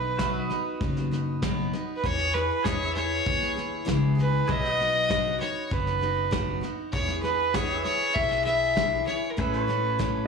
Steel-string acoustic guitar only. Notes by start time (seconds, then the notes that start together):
Already playing: B3 D#4 B4
0.19 B2 F#3 B3 D#4 B4
0.50 B3 D#4 B4
0.81 F#3 B3 D#4 B4
1.11 B3 D#4 B4
1.43 B2 F#3 B3 D#4 B4
1.73 B3 D#4 B4
2.05 E3 B3 E4 G#4
2.35 B3 E4 G#4
2.65 E3 B3 E4 G#4
2.95 B3 E4 G#4
3.26 B3 E4 G#4
3.55 B3 E4 G#4
3.85 E3 B3 E4 G#4
4.15 B3 E4 G#4
4.47 B2 F#3 B3 D#4 F#4
4.77 B3 D#4 F#4
5.08 B2 F#3 B3 D#4 F#4
5.38 B3 D#4 F#4
5.70 F#3 B3 D#4 F#4
6.01 B3 D#4 F#4
6.31 B2 F#3 B3 D#4 F#4
6.61 B3 D#4 F#4
6.93 E3 B3 E4 G#4
7.23 B3 E4 G#4
7.54 E3 B3 E4 G#4
7.84 B3 E4 G#4
8.14 E3 B3 E4 G#4
8.45 B3 E4 G#4
8.76 E3 B3 E4 G#4
9.06 B3 E4 G#4
9.37 A2 E3 A3 C#4 E4 A4
9.67 A3 C#4 E4 A4
9.98 A2 E3 A3 C#4 E4 A4